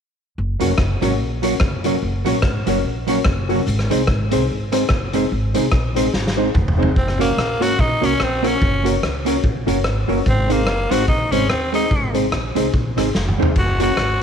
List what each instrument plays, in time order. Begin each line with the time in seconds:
0.38 upright bass F#1
0.60 upright bass F1, hollow-body jazz guitar F#3 A#3 C#4 F#4, upright piano C#4 F#4 A#4 C#5, closed hi-hat
0.78 upright bass F#1, kick, cross-stick
1.01 upright bass G#1, hollow-body jazz guitar F#3 A#3 C#4 F#4, upright piano C#4 F#4 A#4 C#5, closed hi-hat
1.20 upright bass A#1, upright piano A#4 C#5
1.42 hollow-body jazz guitar F#3 A#3 C#4 F#4, upright piano C#4 F#4 A#4 C#5, closed hi-hat
1.60 upright bass F#1, kick, cross-stick
1.84 hollow-body jazz guitar F#3 A#3 C#4 F#4, upright piano C#4 F#4 A#4 C#5, closed hi-hat
2.02 upright bass F#1
2.25 upright bass A#1, hollow-body jazz guitar F#3 A#3 C#4 F#4, upright piano C#4 F#4 A#4 C#5, closed hi-hat
2.42 upright bass G#1, kick, cross-stick
2.66 upright bass F#1, hollow-body jazz guitar F#3 A#3 C#4 F#4, upright piano C#4 F#4 A#4 C#5, closed hi-hat
2.84 upright bass A#1, upright piano A#4 C#5
3.07 hollow-body jazz guitar F#3 A#3 C#4 F#4, upright piano C#4 F#4 A#4 C#5, closed hi-hat
3.25 upright bass F#1, kick, cross-stick
3.49 hollow-body jazz guitar F#3 A#3 C#4 F#4, upright piano C#4 F#4 A#4 C#5, open hi-hat
3.67 upright bass G#1, hi-hat pedal
3.79 cross-stick
3.90 upright bass C2, hollow-body jazz guitar G#3 C4 D#4 G#4, upright piano C4 D#4 G#4 C5, closed hi-hat
4.07 upright bass G#1, kick, cross-stick
4.31 upright bass C2, hollow-body jazz guitar G#3 C4 D#4 G#4, upright piano C4 D#4 G#4 C5, closed hi-hat
4.49 upright bass G#1, upright piano G#4 C5
4.72 hollow-body jazz guitar G#3 C4 D#4 G#4, upright piano C4 D#4 G#4 C5, cross-stick, closed hi-hat
4.89 upright bass F#1, kick, cross-stick
5.13 hollow-body jazz guitar G#3 C4 D#4 G#4, upright piano C4 D#4 G#4 C5, closed hi-hat
5.32 upright bass G#1
5.54 upright bass C2, hollow-body jazz guitar G#3 C4 D#4 G#4, upright piano C4 D#4 G#4 C5, closed hi-hat
5.72 upright bass A#1, kick, cross-stick
5.95 hollow-body jazz guitar G#3 C4 D#4 G#4, upright piano C4 D#4 G#4 C5, closed hi-hat
6.14 upright bass G#1, upright piano G#4 C5, snare
6.27 snare
6.36 hollow-body jazz guitar G#3 C4 D#4 G#4, upright piano C4 D#4 G#4 C5
6.55 upright bass F1, kick, mid tom
6.68 floor tom
6.77 hollow-body jazz guitar G#3 C4 D#4 G#4, upright piano C4 D#4 G#4 C5
6.83 floor tom
6.96 upright bass F#1, tenor saxophone C4, kick
7.08 cross-stick
7.18 hollow-body jazz guitar A#3 C#4 F#4 A#4, tenor saxophone A#3, upright piano C#4 F#4 A#4 C#5, closed hi-hat
7.38 upright bass A#1, cross-stick
7.60 upright bass G#1, hollow-body jazz guitar A#3 C#4 F#4 A#4, upright piano C#4 F#4 A#4 C#5, tenor saxophone F#4, closed hi-hat
7.79 upright bass A#1, tenor saxophone D#4, kick
8.01 upright bass C2, hollow-body jazz guitar A#3 C#4 F#4 A#4, upright piano C#4 F#4 A#4 C#5, closed hi-hat
8.06 tenor saxophone C#4
8.20 upright bass A#1, tenor saxophone C4, cross-stick
8.42 hollow-body jazz guitar A#3 C#4 F#4 A#4, upright piano C#4 F#4 A#4 C#5, closed hi-hat
8.48 tenor saxophone C#4
8.62 upright bass F#1, kick
8.83 hollow-body jazz guitar A#3 C#4 F#4 A#4, upright piano C#4 F#4 A#4 C#5, closed hi-hat
9.03 upright bass C#2, cross-stick
9.25 hollow-body jazz guitar A#3 C#4 F#4 A#4, upright piano C#4 F#4 A#4 C#5, closed hi-hat
9.44 upright bass A#1, kick
9.66 upright bass F#1, hollow-body jazz guitar A#3 C#4 F#4 A#4, upright piano C#4 F#4 A#4 C#5, closed hi-hat
9.84 upright bass G#1, cross-stick
10.08 upright bass F#1, hollow-body jazz guitar A#3 C#4 F#4 A#4, upright piano C#4 F#4 A#4 C#5, open hi-hat
10.26 upright bass G#1, tenor saxophone C4, kick, hi-hat pedal
10.48 hollow-body jazz guitar G#3 C4 D#4 G#4, tenor saxophone A#3, upright piano C4 D#4 G#4 C5, closed hi-hat
10.67 upright bass F#1, cross-stick
10.91 upright bass G#1, hollow-body jazz guitar G#3 C4 D#4 G#4, upright piano C4 D#4 G#4 C5, tenor saxophone F#4, closed hi-hat
11.08 upright bass A#1, tenor saxophone D#4, kick
11.32 upright bass G#1, hollow-body jazz guitar G#3 C4 D#4 G#4, upright piano C4 D#4 G#4 C5, tenor saxophone C#4, closed hi-hat
11.49 upright bass D#2, tenor saxophone C4, cross-stick
11.72 hollow-body jazz guitar G#3 C4 D#4 G#4, upright piano C4 D#4 G#4 C5, tenor saxophone D#4, closed hi-hat
11.91 upright bass G#1, kick
12.14 hollow-body jazz guitar G#3 C4 D#4 G#4, upright piano C4 D#4 G#4 C5, closed hi-hat
12.32 upright bass A#1, cross-stick
12.55 upright bass C2, hollow-body jazz guitar G#3 C4 D#4 G#4, upright piano C4 D#4 G#4 C5, closed hi-hat
12.74 upright bass A#1, kick
12.97 upright bass G#1, hollow-body jazz guitar G#3 C4 D#4 G#4, upright piano C4 D#4 G#4 C5, cross-stick, closed hi-hat
13.15 upright bass F1, snare
13.28 mid tom
13.38 upright bass F1, hollow-body jazz guitar G#3 C4 D#4 G#4, upright piano C4 D#4 G#4 C5
13.42 floor tom
13.56 upright bass F#1, tenor saxophone F#4, kick, crash
13.79 hollow-body jazz guitar A#3 C#4 F#4 A#4, upright piano C#4 F#4 A#4 C#5, tenor saxophone F#4, closed hi-hat
13.97 upright bass G#1, cross-stick